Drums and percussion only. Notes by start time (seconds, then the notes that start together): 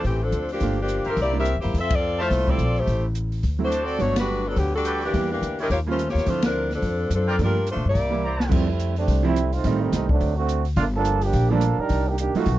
0.04 kick, open hi-hat
0.32 closed hi-hat
0.49 open hi-hat
0.60 kick, open hi-hat
0.88 closed hi-hat
1.04 open hi-hat
1.17 kick, open hi-hat
1.45 closed hi-hat
1.62 open hi-hat
1.74 kick, open hi-hat
1.90 kick, ride
2.31 kick, snare, open hi-hat
2.48 kick
2.59 closed hi-hat
2.76 open hi-hat
2.87 kick, open hi-hat
3.15 closed hi-hat
3.32 open hi-hat
3.43 kick, open hi-hat
3.72 closed hi-hat
3.88 open hi-hat
4.00 kick, open hi-hat
4.16 snare, ride
4.56 kick, open hi-hat
4.85 closed hi-hat
5.01 open hi-hat
5.14 kick, open hi-hat
5.43 closed hi-hat
5.59 open hi-hat
5.70 kick, open hi-hat
5.99 closed hi-hat
6.09 snare
6.15 snare, open hi-hat
6.26 kick, open hi-hat
6.42 snare, ride
6.71 snare, open hi-hat
6.82 kick, open hi-hat
7.11 closed hi-hat
7.39 kick, open hi-hat
7.67 closed hi-hat
7.95 kick, open hi-hat
8.40 snare
8.51 kick, crash
8.80 closed hi-hat
8.96 open hi-hat
9.08 kick, open hi-hat
9.36 closed hi-hat
9.53 open hi-hat
9.64 kick, open hi-hat
9.93 snare, closed hi-hat
10.09 kick
10.21 kick, open hi-hat
10.49 closed hi-hat
10.65 open hi-hat
10.76 kick, open hi-hat
11.05 closed hi-hat
11.21 open hi-hat
11.33 kick, open hi-hat
11.61 closed hi-hat
11.89 kick, open hi-hat
12.18 closed hi-hat
12.35 open hi-hat
12.46 kick, open hi-hat